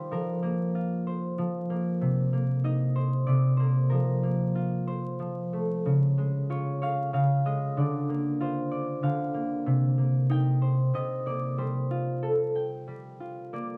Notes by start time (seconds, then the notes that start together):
Already playing: D#3 G3 A#3 D#4 F4 C5 D5 F5
0.11 F3 A#4
0.43 A#3
0.75 F4
1.07 C5
1.38 F3
1.70 A#3
2.01 C3
2.33 A#3
2.64 D#4 D#5
2.96 C5
3.27 C3 D5
3.57 A#3 C5
3.90 F3 A#4
4.23 A#3
4.55 F4
4.87 C5
5.20 F3
5.53 A3
5.86 C#3
6.18 G#3
6.50 F4 C#5
6.82 C#5 F5
7.13 C#3 F5
7.45 G#3 D#5
7.77 D3 D5
8.09 A#3
8.40 F4 C5
8.71 D5
9.03 D3 F5
9.34 A#3
9.66 C3
9.98 A#3
10.30 D#4 G5
10.62 C5
10.94 C3 D#5
11.26 A#3 D5
11.58 G3 C5
11.91 F4
12.23 A4
12.55 G5
12.88 G3
13.20 F4
13.53 A#3 D5